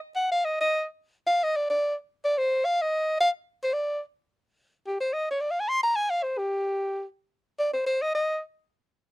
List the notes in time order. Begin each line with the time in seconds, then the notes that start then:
0.15 F#5
0.32 F5
0.45 D#5
0.60 D#5
1.27 F5
1.43 D#5
1.56 D5
1.70 D5
2.25 D5
2.38 C5
2.65 F5
2.81 D#5
3.20 F5
3.63 C5
3.73 D5
4.86 G4
5.00 C5
5.13 D#5
5.31 C#5
5.40 D5
5.51 F5
5.60 G#5
5.69 C6
5.83 A#5
5.96 G#5
6.10 F5
6.23 C5
6.38 G4
7.59 D5
7.73 C5
7.86 C5
8.02 D#5
8.15 D#5